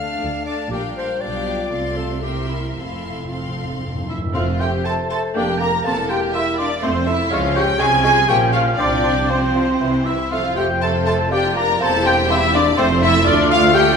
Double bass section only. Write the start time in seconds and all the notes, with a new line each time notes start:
Already playing: D2
0.21 D2
0.71 A#1
1.22 B1
1.73 C2
2.76 F1
4.35 F1
5.37 F1
5.87 E1
6.84 F1
7.31 C#2
7.80 C2
8.29 A#1
8.79 C2
9.80 C2
10.32 F1
11.81 E1
12.78 F1
13.26 D2